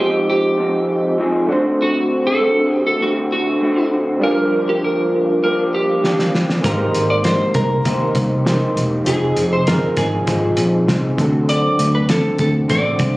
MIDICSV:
0, 0, Header, 1, 6, 480
1, 0, Start_track
1, 0, Tempo, 605449
1, 1424, Time_signature, 4, 2, 24, 8
1, 10440, End_track
2, 0, Start_track
2, 0, Title_t, "Electric slide guitar"
2, 0, Program_c, 0, 29
2, 0, Note_on_c, 0, 67, 74
2, 225, Note_off_c, 0, 67, 0
2, 235, Note_on_c, 0, 67, 70
2, 918, Note_off_c, 0, 67, 0
2, 1444, Note_on_c, 0, 66, 82
2, 1798, Note_on_c, 0, 69, 95
2, 1805, Note_off_c, 0, 66, 0
2, 2170, Note_off_c, 0, 69, 0
2, 2170, Note_on_c, 0, 67, 95
2, 2263, Note_off_c, 0, 67, 0
2, 2272, Note_on_c, 0, 69, 83
2, 2380, Note_off_c, 0, 69, 0
2, 2397, Note_on_c, 0, 66, 81
2, 2460, Note_off_c, 0, 66, 0
2, 2635, Note_on_c, 0, 66, 74
2, 3078, Note_off_c, 0, 66, 0
2, 3358, Note_on_c, 0, 70, 88
2, 3719, Note_on_c, 0, 67, 82
2, 3722, Note_off_c, 0, 70, 0
2, 3835, Note_off_c, 0, 67, 0
2, 3841, Note_on_c, 0, 70, 78
2, 4300, Note_off_c, 0, 70, 0
2, 4310, Note_on_c, 0, 70, 84
2, 4531, Note_off_c, 0, 70, 0
2, 4555, Note_on_c, 0, 67, 67
2, 4998, Note_off_c, 0, 67, 0
2, 5274, Note_on_c, 0, 70, 77
2, 5630, Note_on_c, 0, 74, 90
2, 5641, Note_off_c, 0, 70, 0
2, 5669, Note_off_c, 0, 74, 0
2, 5747, Note_on_c, 0, 72, 83
2, 5984, Note_off_c, 0, 72, 0
2, 5987, Note_on_c, 0, 70, 73
2, 6435, Note_off_c, 0, 70, 0
2, 7195, Note_on_c, 0, 68, 81
2, 7525, Note_off_c, 0, 68, 0
2, 7553, Note_on_c, 0, 72, 92
2, 7670, Note_on_c, 0, 70, 81
2, 7673, Note_off_c, 0, 72, 0
2, 7908, Note_on_c, 0, 68, 73
2, 7915, Note_off_c, 0, 70, 0
2, 8355, Note_off_c, 0, 68, 0
2, 9110, Note_on_c, 0, 74, 94
2, 9472, Note_on_c, 0, 71, 89
2, 9479, Note_off_c, 0, 74, 0
2, 9512, Note_off_c, 0, 71, 0
2, 9597, Note_on_c, 0, 69, 78
2, 9815, Note_off_c, 0, 69, 0
2, 9832, Note_on_c, 0, 69, 78
2, 9896, Note_off_c, 0, 69, 0
2, 10070, Note_on_c, 0, 74, 95
2, 10439, Note_off_c, 0, 74, 0
2, 10440, End_track
3, 0, Start_track
3, 0, Title_t, "Synth keys"
3, 0, Program_c, 1, 88
3, 0, Control_c, 1, 64, 127
3, 0, Note_on_c, 1, 56, 58
3, 0, Note_on_c, 1, 63, 51
3, 0, Note_on_c, 1, 65, 54
3, 0, Note_on_c, 1, 72, 63
3, 1142, Note_off_c, 1, 56, 0
3, 1148, Note_off_c, 1, 63, 0
3, 1155, Note_off_c, 1, 65, 0
3, 1161, Note_off_c, 1, 72, 0
3, 1163, Note_on_c, 1, 57, 73
3, 1178, Note_on_c, 1, 62, 64
3, 1191, Note_on_c, 1, 66, 67
3, 1194, Control_c, 1, 64, 0
3, 1205, Note_on_c, 1, 72, 80
3, 1320, Control_c, 1, 64, 127
3, 3062, Note_off_c, 1, 57, 0
3, 3070, Note_off_c, 1, 62, 0
3, 3076, Note_off_c, 1, 66, 0
3, 3083, Note_off_c, 1, 72, 0
3, 3323, Note_on_c, 1, 55, 60
3, 3340, Note_on_c, 1, 62, 52
3, 3349, Note_on_c, 1, 65, 53
3, 3356, Control_c, 1, 64, 0
3, 3363, Note_on_c, 1, 68, 51
3, 3405, Note_off_c, 1, 68, 0
3, 3417, Note_on_c, 1, 70, 64
3, 3483, Control_c, 1, 64, 127
3, 5223, Note_off_c, 1, 55, 0
3, 5231, Note_off_c, 1, 62, 0
3, 5236, Note_off_c, 1, 65, 0
3, 5240, Note_on_c, 1, 56, 60
3, 5256, Note_on_c, 1, 60, 52
3, 5270, Note_off_c, 1, 70, 0
3, 5270, Note_on_c, 1, 67, 56
3, 5276, Control_c, 1, 64, 0
3, 5281, Note_on_c, 1, 70, 64
3, 5435, Control_c, 1, 64, 127
3, 6664, Note_off_c, 1, 56, 0
3, 6672, Note_off_c, 1, 60, 0
3, 6679, Note_off_c, 1, 67, 0
3, 6685, Note_off_c, 1, 70, 0
3, 6696, Note_on_c, 1, 56, 55
3, 6702, Note_on_c, 1, 60, 50
3, 6709, Note_on_c, 1, 67, 48
3, 6716, Note_on_c, 1, 70, 58
3, 7165, Note_on_c, 1, 53, 57
3, 7169, Note_off_c, 1, 60, 0
3, 7179, Note_on_c, 1, 60, 53
3, 7181, Note_off_c, 1, 56, 0
3, 7187, Note_off_c, 1, 67, 0
3, 7191, Note_off_c, 1, 70, 0
3, 7194, Note_on_c, 1, 63, 55
3, 7196, Control_c, 1, 64, 0
3, 7205, Note_on_c, 1, 68, 63
3, 7332, Control_c, 1, 64, 127
3, 8824, Note_off_c, 1, 53, 0
3, 8830, Note_off_c, 1, 60, 0
3, 8838, Note_off_c, 1, 63, 0
3, 8843, Note_off_c, 1, 68, 0
3, 8845, Note_on_c, 1, 52, 58
3, 8860, Note_on_c, 1, 60, 65
3, 8870, Note_on_c, 1, 62, 67
3, 8876, Control_c, 1, 64, 0
3, 8886, Note_on_c, 1, 69, 81
3, 8898, Note_on_c, 1, 54, 73
3, 8907, Note_off_c, 1, 52, 0
3, 9005, Control_c, 1, 64, 127
3, 10440, Note_off_c, 1, 54, 0
3, 10440, Note_off_c, 1, 60, 0
3, 10440, Note_off_c, 1, 62, 0
3, 10440, Note_off_c, 1, 69, 0
3, 10440, End_track
4, 0, Start_track
4, 0, Title_t, "Clean electric guitar"
4, 0, Program_c, 2, 27
4, 0, Note_on_c, 2, 53, 45
4, 0, Note_on_c, 2, 60, 52
4, 0, Note_on_c, 2, 63, 55
4, 0, Note_on_c, 2, 72, 65
4, 447, Note_off_c, 2, 53, 0
4, 456, Note_on_c, 2, 53, 55
4, 466, Note_off_c, 2, 60, 0
4, 468, Note_off_c, 2, 63, 0
4, 470, Note_on_c, 2, 60, 53
4, 477, Note_on_c, 2, 63, 58
4, 926, Note_off_c, 2, 53, 0
4, 936, Note_on_c, 2, 53, 59
4, 942, Note_off_c, 2, 60, 0
4, 945, Note_off_c, 2, 63, 0
4, 945, Note_on_c, 2, 60, 64
4, 954, Note_on_c, 2, 63, 67
4, 964, Note_on_c, 2, 68, 69
4, 1175, Note_off_c, 2, 68, 0
4, 1176, Note_off_c, 2, 60, 0
4, 1178, Note_on_c, 2, 66, 69
4, 1180, Note_off_c, 2, 53, 0
4, 1182, Note_off_c, 2, 63, 0
4, 1186, Note_on_c, 2, 60, 64
4, 1193, Note_on_c, 2, 57, 60
4, 1197, Note_on_c, 2, 50, 56
4, 1202, Note_off_c, 2, 72, 0
4, 1893, Note_off_c, 2, 50, 0
4, 1896, Note_on_c, 2, 50, 47
4, 1898, Note_off_c, 2, 57, 0
4, 1901, Note_off_c, 2, 66, 0
4, 1905, Note_off_c, 2, 60, 0
4, 1907, Note_on_c, 2, 57, 50
4, 1917, Note_on_c, 2, 60, 58
4, 1925, Note_on_c, 2, 66, 57
4, 2372, Note_off_c, 2, 50, 0
4, 2375, Note_on_c, 2, 50, 50
4, 2378, Note_off_c, 2, 57, 0
4, 2385, Note_off_c, 2, 60, 0
4, 2387, Note_on_c, 2, 57, 57
4, 2395, Note_off_c, 2, 66, 0
4, 2395, Note_on_c, 2, 60, 55
4, 2403, Note_on_c, 2, 66, 57
4, 2854, Note_off_c, 2, 50, 0
4, 2857, Note_on_c, 2, 50, 55
4, 2859, Note_off_c, 2, 57, 0
4, 2866, Note_off_c, 2, 60, 0
4, 2869, Note_on_c, 2, 57, 58
4, 2874, Note_off_c, 2, 66, 0
4, 2876, Note_on_c, 2, 60, 58
4, 2886, Note_on_c, 2, 66, 63
4, 3334, Note_on_c, 2, 43, 70
4, 3341, Note_off_c, 2, 50, 0
4, 3344, Note_on_c, 2, 50, 72
4, 3347, Note_off_c, 2, 57, 0
4, 3350, Note_off_c, 2, 60, 0
4, 3353, Note_on_c, 2, 53, 74
4, 3356, Note_off_c, 2, 66, 0
4, 3361, Note_on_c, 2, 58, 70
4, 3371, Note_on_c, 2, 62, 74
4, 3378, Note_on_c, 2, 67, 71
4, 4288, Note_off_c, 2, 53, 0
4, 4298, Note_on_c, 2, 53, 52
4, 4299, Note_off_c, 2, 43, 0
4, 4305, Note_off_c, 2, 50, 0
4, 4308, Note_off_c, 2, 58, 0
4, 4310, Note_off_c, 2, 62, 0
4, 4311, Note_on_c, 2, 58, 52
4, 4319, Note_on_c, 2, 62, 63
4, 4321, Note_off_c, 2, 67, 0
4, 4326, Note_on_c, 2, 67, 61
4, 4766, Note_off_c, 2, 53, 0
4, 4775, Note_on_c, 2, 53, 57
4, 4785, Note_off_c, 2, 58, 0
4, 4786, Note_off_c, 2, 62, 0
4, 4789, Note_on_c, 2, 58, 62
4, 4796, Note_on_c, 2, 62, 58
4, 4799, Note_off_c, 2, 67, 0
4, 4804, Note_on_c, 2, 67, 62
4, 5249, Note_on_c, 2, 56, 65
4, 5260, Note_off_c, 2, 53, 0
4, 5265, Note_off_c, 2, 58, 0
4, 5265, Note_on_c, 2, 58, 74
4, 5270, Note_off_c, 2, 62, 0
4, 5275, Note_on_c, 2, 63, 72
4, 5286, Note_off_c, 2, 67, 0
4, 5286, Note_on_c, 2, 67, 76
4, 5295, Note_on_c, 2, 72, 75
4, 6211, Note_off_c, 2, 58, 0
4, 6221, Note_on_c, 2, 58, 52
4, 6227, Note_off_c, 2, 63, 0
4, 6229, Note_off_c, 2, 67, 0
4, 6230, Note_on_c, 2, 63, 59
4, 6239, Note_on_c, 2, 67, 57
4, 6244, Note_off_c, 2, 56, 0
4, 6244, Note_off_c, 2, 72, 0
4, 6249, Note_on_c, 2, 72, 64
4, 6690, Note_off_c, 2, 58, 0
4, 6699, Note_on_c, 2, 58, 62
4, 6707, Note_off_c, 2, 63, 0
4, 6710, Note_off_c, 2, 67, 0
4, 6710, Note_on_c, 2, 63, 71
4, 6720, Note_on_c, 2, 67, 64
4, 6723, Note_off_c, 2, 72, 0
4, 6728, Note_on_c, 2, 72, 70
4, 7181, Note_on_c, 2, 53, 68
4, 7182, Note_off_c, 2, 58, 0
4, 7189, Note_on_c, 2, 60, 72
4, 7192, Note_off_c, 2, 63, 0
4, 7193, Note_off_c, 2, 67, 0
4, 7195, Note_on_c, 2, 63, 82
4, 7201, Note_on_c, 2, 68, 80
4, 7649, Note_off_c, 2, 53, 0
4, 7658, Note_on_c, 2, 53, 53
4, 7664, Note_off_c, 2, 60, 0
4, 7667, Note_on_c, 2, 60, 54
4, 7670, Note_off_c, 2, 63, 0
4, 7673, Note_off_c, 2, 68, 0
4, 7678, Note_on_c, 2, 63, 52
4, 7685, Note_on_c, 2, 68, 59
4, 8128, Note_off_c, 2, 53, 0
4, 8138, Note_on_c, 2, 53, 56
4, 8148, Note_off_c, 2, 60, 0
4, 8149, Note_off_c, 2, 63, 0
4, 8151, Note_on_c, 2, 60, 55
4, 8155, Note_off_c, 2, 68, 0
4, 8159, Note_on_c, 2, 63, 58
4, 8168, Note_on_c, 2, 68, 58
4, 8611, Note_off_c, 2, 53, 0
4, 8621, Note_on_c, 2, 53, 60
4, 8629, Note_off_c, 2, 60, 0
4, 8630, Note_off_c, 2, 63, 0
4, 8632, Note_on_c, 2, 60, 65
4, 8636, Note_off_c, 2, 68, 0
4, 8640, Note_on_c, 2, 63, 72
4, 8651, Note_on_c, 2, 68, 72
4, 8852, Note_off_c, 2, 68, 0
4, 8855, Note_on_c, 2, 66, 64
4, 8863, Note_off_c, 2, 53, 0
4, 8863, Note_off_c, 2, 60, 0
4, 8869, Note_off_c, 2, 63, 0
4, 8872, Note_on_c, 2, 60, 66
4, 8879, Note_off_c, 2, 72, 0
4, 8886, Note_on_c, 2, 57, 56
4, 8901, Note_on_c, 2, 50, 57
4, 10052, Note_off_c, 2, 50, 0
4, 10055, Note_on_c, 2, 50, 53
4, 10057, Note_off_c, 2, 57, 0
4, 10060, Note_off_c, 2, 66, 0
4, 10066, Note_on_c, 2, 57, 54
4, 10069, Note_off_c, 2, 60, 0
4, 10077, Note_on_c, 2, 60, 64
4, 10085, Note_on_c, 2, 66, 59
4, 10440, Note_off_c, 2, 50, 0
4, 10440, Note_off_c, 2, 57, 0
4, 10440, Note_off_c, 2, 60, 0
4, 10440, Note_off_c, 2, 66, 0
4, 10440, End_track
5, 0, Start_track
5, 0, Title_t, "Picked electric bass"
5, 0, Program_c, 3, 34
5, 5266, Note_on_c, 3, 32, 94
5, 5458, Note_off_c, 3, 32, 0
5, 5506, Note_on_c, 3, 32, 83
5, 5890, Note_off_c, 3, 32, 0
5, 5985, Note_on_c, 3, 36, 82
5, 6177, Note_off_c, 3, 36, 0
5, 6229, Note_on_c, 3, 39, 79
5, 6420, Note_off_c, 3, 39, 0
5, 6465, Note_on_c, 3, 36, 80
5, 6849, Note_off_c, 3, 36, 0
5, 6946, Note_on_c, 3, 28, 81
5, 7138, Note_off_c, 3, 28, 0
5, 7187, Note_on_c, 3, 29, 95
5, 7378, Note_off_c, 3, 29, 0
5, 7426, Note_on_c, 3, 29, 87
5, 7667, Note_off_c, 3, 29, 0
5, 7667, Note_on_c, 3, 31, 80
5, 7859, Note_off_c, 3, 31, 0
5, 7907, Note_on_c, 3, 32, 82
5, 8098, Note_off_c, 3, 32, 0
5, 8147, Note_on_c, 3, 32, 89
5, 8338, Note_off_c, 3, 32, 0
5, 8384, Note_on_c, 3, 34, 78
5, 8577, Note_off_c, 3, 34, 0
5, 8622, Note_on_c, 3, 36, 81
5, 8815, Note_off_c, 3, 36, 0
5, 8867, Note_on_c, 3, 38, 85
5, 9250, Note_off_c, 3, 38, 0
5, 9346, Note_on_c, 3, 38, 84
5, 9730, Note_off_c, 3, 38, 0
5, 9825, Note_on_c, 3, 38, 79
5, 10017, Note_off_c, 3, 38, 0
5, 10065, Note_on_c, 3, 33, 78
5, 10257, Note_off_c, 3, 33, 0
5, 10304, Note_on_c, 3, 36, 80
5, 10440, Note_off_c, 3, 36, 0
5, 10440, End_track
6, 0, Start_track
6, 0, Title_t, "Drums"
6, 4789, Note_on_c, 9, 38, 51
6, 4868, Note_off_c, 9, 38, 0
6, 4908, Note_on_c, 9, 38, 53
6, 4988, Note_off_c, 9, 38, 0
6, 5031, Note_on_c, 9, 38, 78
6, 5110, Note_off_c, 9, 38, 0
6, 5150, Note_on_c, 9, 38, 76
6, 5229, Note_off_c, 9, 38, 0
6, 5265, Note_on_c, 9, 42, 86
6, 5267, Note_on_c, 9, 36, 99
6, 5344, Note_off_c, 9, 42, 0
6, 5346, Note_off_c, 9, 36, 0
6, 5506, Note_on_c, 9, 42, 64
6, 5586, Note_off_c, 9, 42, 0
6, 5741, Note_on_c, 9, 42, 68
6, 5748, Note_on_c, 9, 38, 105
6, 5820, Note_off_c, 9, 42, 0
6, 5827, Note_off_c, 9, 38, 0
6, 5980, Note_on_c, 9, 42, 63
6, 5985, Note_on_c, 9, 36, 82
6, 6060, Note_off_c, 9, 42, 0
6, 6064, Note_off_c, 9, 36, 0
6, 6226, Note_on_c, 9, 42, 73
6, 6228, Note_on_c, 9, 36, 72
6, 6305, Note_off_c, 9, 42, 0
6, 6307, Note_off_c, 9, 36, 0
6, 6460, Note_on_c, 9, 42, 75
6, 6465, Note_on_c, 9, 36, 80
6, 6539, Note_off_c, 9, 42, 0
6, 6545, Note_off_c, 9, 36, 0
6, 6711, Note_on_c, 9, 38, 99
6, 6715, Note_on_c, 9, 42, 70
6, 6790, Note_off_c, 9, 38, 0
6, 6795, Note_off_c, 9, 42, 0
6, 6953, Note_on_c, 9, 42, 62
6, 7032, Note_off_c, 9, 42, 0
6, 7185, Note_on_c, 9, 42, 84
6, 7264, Note_off_c, 9, 42, 0
6, 7425, Note_on_c, 9, 42, 62
6, 7504, Note_off_c, 9, 42, 0
6, 7666, Note_on_c, 9, 42, 71
6, 7673, Note_on_c, 9, 38, 99
6, 7745, Note_off_c, 9, 42, 0
6, 7752, Note_off_c, 9, 38, 0
6, 7901, Note_on_c, 9, 42, 64
6, 7906, Note_on_c, 9, 36, 83
6, 7908, Note_on_c, 9, 38, 35
6, 7980, Note_off_c, 9, 42, 0
6, 7985, Note_off_c, 9, 36, 0
6, 7987, Note_off_c, 9, 38, 0
6, 8144, Note_on_c, 9, 42, 76
6, 8147, Note_on_c, 9, 36, 73
6, 8223, Note_off_c, 9, 42, 0
6, 8227, Note_off_c, 9, 36, 0
6, 8378, Note_on_c, 9, 42, 72
6, 8458, Note_off_c, 9, 42, 0
6, 8629, Note_on_c, 9, 38, 102
6, 8633, Note_on_c, 9, 42, 69
6, 8708, Note_off_c, 9, 38, 0
6, 8713, Note_off_c, 9, 42, 0
6, 8867, Note_on_c, 9, 36, 91
6, 8871, Note_on_c, 9, 42, 61
6, 8946, Note_off_c, 9, 36, 0
6, 8950, Note_off_c, 9, 42, 0
6, 9108, Note_on_c, 9, 42, 83
6, 9188, Note_off_c, 9, 42, 0
6, 9348, Note_on_c, 9, 42, 68
6, 9427, Note_off_c, 9, 42, 0
6, 9584, Note_on_c, 9, 42, 75
6, 9591, Note_on_c, 9, 38, 109
6, 9663, Note_off_c, 9, 42, 0
6, 9670, Note_off_c, 9, 38, 0
6, 9819, Note_on_c, 9, 42, 62
6, 9825, Note_on_c, 9, 36, 83
6, 9898, Note_off_c, 9, 42, 0
6, 9904, Note_off_c, 9, 36, 0
6, 10064, Note_on_c, 9, 42, 77
6, 10067, Note_on_c, 9, 36, 75
6, 10143, Note_off_c, 9, 42, 0
6, 10146, Note_off_c, 9, 36, 0
6, 10298, Note_on_c, 9, 42, 73
6, 10304, Note_on_c, 9, 36, 80
6, 10378, Note_off_c, 9, 42, 0
6, 10383, Note_off_c, 9, 36, 0
6, 10440, End_track
0, 0, End_of_file